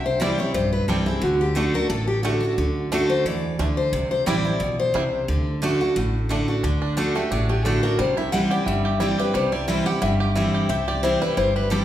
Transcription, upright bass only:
Already playing: C2
0.54 B1
0.88 C2
1.22 D2
1.90 A1
2.58 D2
3.25 E2
3.59 D2
3.93 C2
4.27 A1
4.60 B1
4.95 C2
5.28 D2
5.96 A1
6.63 D2
7.31 A1
7.99 C2
8.66 G1
9.34 C2
10.02 G1
10.69 C2
11.37 G1

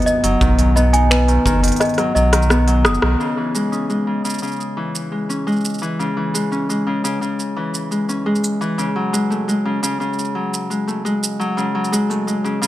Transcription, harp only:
Already playing: D#3 F#3 B3 D#4
0.24 F#3
0.41 D#3
0.58 F#3
0.76 B3
0.93 D#4
1.11 B3
1.28 D#3
1.45 D#3
1.63 D#3
1.98 F#3
2.15 F#3
2.33 D#3
2.50 B3
2.67 F#3
3.02 D#3
3.20 C#3
3.37 E3
3.55 G#3
3.72 C#4
3.90 G#3
4.07 C#3
4.24 C#3
4.42 C#3
4.77 E3
5.12 G#3
5.29 C#4
5.47 G#3
5.82 E3
5.99 C#3
6.17 E3
6.34 G#3
6.52 C#4
6.69 G#3
6.87 C#3
7.04 C#3
7.21 C#3
7.56 E3
7.91 G#3
8.09 C#4
8.26 G#3
8.61 E3
8.78 C#3
8.96 F#3
9.13 G#3
9.30 A3
9.48 G#3
9.65 C#3
9.83 C#3
10.00 C#3
10.35 F#3
10.70 G#3
10.87 A3
11.05 G#3
11.39 F#3
11.57 C#3
11.75 F#3
11.92 G#3
12.10 A3
12.27 G#3
12.44 C#3
12.62 C#3

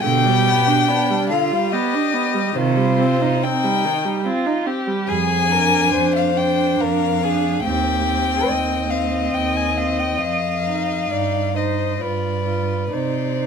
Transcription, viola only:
0.05 D3
0.26 G3
0.47 B3
0.67 D4
0.88 B3
1.10 G3
1.30 D3
1.52 G3
1.73 B3
1.94 D4
2.14 B3
2.35 G3
2.56 D#3
2.77 G3
2.98 C4
3.21 D#4
3.44 C4
3.64 G3
3.85 D#3
4.05 G3
4.25 C4
4.46 D#4
4.66 C4
4.87 G3
5.51 D4
6.37 D4
7.23 D4
7.64 C4
8.05 C4
8.91 C4
9.78 C4
10.66 D#4
11.10 D#4
11.55 D#4
12.00 F4
12.47 F4
12.92 D#4
13.39 D#4

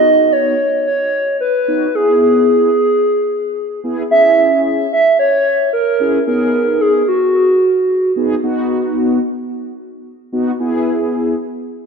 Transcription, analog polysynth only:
Already playing: B3 D#4 F#4
1.68 B3 D#4 F#4
1.95 B3 E4 G#4
3.84 B3 E4 G#4
4.11 C#4 E4 G#4
6.00 C#4 E4 G#4
6.27 B3 D#4 G#4
8.16 B3 D#4 G#4
8.43 B3 D#4 F#4
10.32 B3 D#4 F#4
10.59 B3 E4 G#4

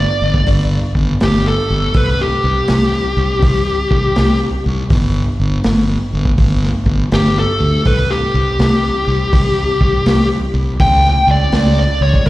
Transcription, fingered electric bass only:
0.22 G1
0.47 G1
0.95 G1
1.22 G1
1.70 G1
1.94 C2
2.44 C2
2.69 C2
3.17 C2
3.42 C2
3.91 C2
4.18 C2
4.66 C2
4.90 G1
5.40 G1
5.65 G1
6.13 G1
6.38 G1
6.86 G1
7.12 G1
7.60 D2
7.86 C2
8.34 C2
8.59 C2
9.07 C2
9.32 C2
9.80 C2
10.06 C2
10.54 C2
10.80 C#2
11.27 C#2
11.52 C#2
12.01 C#2
12.26 C#2

